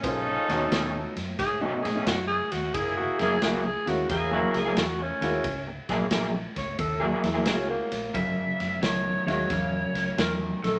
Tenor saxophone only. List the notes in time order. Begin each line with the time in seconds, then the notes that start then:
Already playing: C#4
1.39 G#4
1.61 F#4
1.82 G#4
2.06 F#4
2.27 G#4
2.51 F#4
2.74 G#4
2.97 F#4
3.19 G#4
3.42 F#4
3.65 G#4
3.88 F#4
4.10 G#4
4.33 F#4
4.56 G#4
4.78 F#4
5.03 C#4
6.58 C#5
6.80 A4
7.04 F#4
7.26 E4
7.48 C#4
7.70 A#3